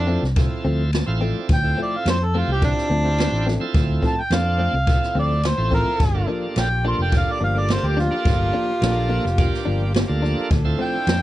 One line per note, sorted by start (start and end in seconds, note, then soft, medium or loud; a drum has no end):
0.00 0.16 F2 loud
0.00 0.24 C4 medium
0.00 0.35 D4 loud
0.00 0.24 E4 medium
0.00 0.24 F4 medium
0.00 0.25 A4 medium
0.07 0.26 F3 medium
0.07 0.26 A3 medium
0.07 0.25 C4 medium
0.23 0.47 C2 loud
0.23 snare soft
0.36 0.91 C4 medium
0.36 0.91 E4 medium
0.36 0.91 F4 medium
0.36 0.91 A4 medium
0.36 kick loud
0.36 ride bell medium
0.65 1.01 D2 medium
0.65 0.83 F3 medium
0.65 0.83 A3 medium
0.65 0.82 C4 medium
0.92 1.06 A5 medium
0.92 snare medium
0.92 ride bell medium
1.06 1.31 A1 medium
1.06 1.50 C4 medium
1.06 1.50 E4 medium
1.06 1.51 F4 medium
1.06 1.51 A4 loud
1.06 1.20 F5 medium
1.21 1.39 F3 medium
1.21 1.39 A3 medium
1.21 1.38 C4 medium
1.21 1.47 D5 medium
1.36 muted fingered electric bass stroke soft
1.49 1.73 D2 loud
1.49 kick loud
1.49 ride bell medium
1.54 1.79 G5 loud
1.63 2.18 C4 medium
1.63 2.18 E4 medium
1.63 2.18 F4 medium
1.63 2.19 A4 medium
1.78 1.96 F3 medium
1.78 1.95 A3 medium
1.78 1.95 C4 medium
1.83 1.98 D5 medium
1.96 2.07 F5 medium
2.05 2.42 F2 loud
2.05 snare loud
2.05 ride bell medium
2.10 2.25 C5 medium
2.24 2.39 A4 medium
2.34 2.52 F3 medium
2.34 2.52 A3 medium
2.34 2.88 C4 medium
2.34 2.51 C4 medium
2.34 2.89 E4 medium
2.34 2.89 F4 medium
2.34 2.49 F4 medium
2.34 2.89 G4 medium
2.47 2.72 C2 loud
2.52 2.63 G4 medium
2.62 3.72 D4 loud
2.62 kick loud
2.62 ride bell medium
2.78 snare soft
2.90 3.26 D2 loud
2.90 3.08 F3 medium
2.90 3.08 A3 medium
2.90 3.07 C4 medium
3.04 3.48 C4 medium
3.04 3.48 E4 medium
3.04 3.48 F4 medium
3.04 3.48 G4 medium
3.18 snare loud
3.18 ride bell medium
3.32 3.56 A1 medium
3.47 3.65 F3 medium
3.47 3.64 A3 medium
3.47 3.64 C4 medium
3.47 snare soft
3.60 4.15 C4 loud
3.60 4.15 E4 medium
3.60 4.15 F4 medium
3.60 4.16 A4 loud
3.60 muted fingered electric bass stroke soft
3.74 3.98 D2 loud
3.74 kick loud
3.74 ride bell medium
4.02 4.21 F3 medium
4.02 4.20 A3 medium
4.02 4.20 C4 medium
4.02 kick medium
4.07 4.22 A5 medium
4.21 4.36 G5 medium
4.30 4.67 F2 loud
4.30 4.75 C4 medium
4.30 4.75 D4 medium
4.30 4.75 F4 medium
4.30 4.75 A4 medium
4.30 snare loud
4.30 ride bell medium
4.35 5.15 F5 loud
4.58 4.77 F3 medium
4.58 4.76 A3 medium
4.58 4.76 C4 medium
4.73 4.97 C2 medium
4.87 5.42 C4 medium
4.87 5.42 E4 medium
4.87 5.42 F4 medium
4.87 5.42 A4 medium
4.87 kick loud
4.87 ride bell medium
5.03 snare soft
5.15 5.52 D2 medium
5.15 5.33 F3 medium
5.15 5.33 A3 medium
5.15 5.33 C4 medium
5.15 5.48 D5 medium
5.43 5.72 C5 medium
5.43 snare loud
5.43 ride bell medium
5.57 5.82 A1 medium
5.57 5.99 C4 medium
5.57 6.00 E4 medium
5.57 6.00 F4 medium
5.57 6.00 A4 medium
5.71 5.90 F3 medium
5.71 5.89 A3 medium
5.71 5.89 C4 medium
5.71 6.28 A#4 loud
5.71 kick medium
5.87 muted fingered electric bass stroke soft
5.99 6.24 G1 medium
5.99 10.46 A#3 medium
5.99 10.46 F4 medium
5.99 10.46 G4 medium
5.99 kick loud
5.99 ride bell medium
6.14 6.69 A#3 medium
6.14 6.69 D4 medium
6.14 6.69 F4 medium
6.14 6.69 A4 medium
6.27 6.46 F3 medium
6.27 6.45 A#3 medium
6.27 6.45 D4 medium
6.56 6.93 A#1 medium
6.56 snare loud
6.56 ride bell medium
6.60 6.85 G5 loud
6.84 7.02 F3 medium
6.84 7.39 A#3 medium
6.84 7.02 A#3 medium
6.84 7.39 D4 medium
6.84 7.02 D4 medium
6.84 7.39 F4 medium
6.84 7.40 A4 medium
6.84 7.00 C6 medium
6.99 7.23 F1 medium
6.99 7.13 G5 medium
7.12 kick loud
7.12 ride bell medium
7.17 7.33 F5 loud
7.32 7.42 D5 medium
7.40 7.77 G1 medium
7.40 7.59 F3 medium
7.40 7.58 A#3 medium
7.40 7.58 D4 medium
7.40 7.61 F5 medium
7.55 7.98 A#3 medium
7.55 7.98 D4 medium
7.55 7.99 F4 medium
7.55 7.99 A4 medium
7.59 7.74 D5 medium
7.69 snare loud
7.69 ride bell medium
7.73 7.88 C5 medium
7.83 8.07 D2 medium
7.83 8.02 G4 medium
7.97 8.15 F3 medium
7.97 8.15 A#3 medium
7.97 8.14 D4 medium
7.97 9.64 F4 medium
7.97 snare soft
8.11 8.66 A#3 medium
8.11 8.66 D4 medium
8.11 8.66 F4 medium
8.11 8.66 A4 medium
8.11 muted fingered electric bass stroke soft
8.25 8.49 G1 loud
8.25 kick loud
8.25 ride bell medium
8.53 8.71 F3 medium
8.53 8.71 A#3 medium
8.53 8.71 D4 medium
8.81 9.18 A#1 loud
8.81 9.25 A#3 medium
8.81 9.25 D4 medium
8.81 9.26 F4 medium
8.81 9.26 A4 loud
8.81 snare loud
8.81 ride bell medium
9.09 9.28 F3 medium
9.09 9.27 A#3 medium
9.09 9.27 D4 medium
9.25 9.48 F1 loud
9.25 snare soft
9.38 9.93 A#3 medium
9.38 9.93 D4 medium
9.38 9.93 F4 medium
9.38 9.93 G4 medium
9.38 kick loud
9.38 ride bell medium
9.54 snare soft
9.65 10.03 G1 loud
9.65 9.84 F3 medium
9.65 9.83 A#3 medium
9.65 9.83 D4 medium
9.94 snare loud
9.94 ride bell medium
10.08 10.33 D2 medium
10.08 10.50 A#3 medium
10.08 10.50 D4 medium
10.08 10.50 F4 medium
10.08 10.51 A4 loud
10.22 10.41 F3 medium
10.22 10.40 A#3 medium
10.22 10.40 D4 medium
10.22 snare soft
10.37 muted fingered electric bass stroke soft
10.50 10.74 D2 medium
10.50 11.22 D4 medium
10.50 11.22 A4 loud
10.50 kick loud
10.50 ride bell medium
10.65 11.19 C4 medium
10.65 11.19 E4 medium
10.65 11.20 F4 medium
10.65 11.20 A4 medium
10.79 10.97 F3 medium
10.79 10.96 A3 medium
10.79 10.96 C4 medium
10.79 11.22 G5 loud
11.07 11.22 F2 loud
11.07 snare loud
11.07 ride bell medium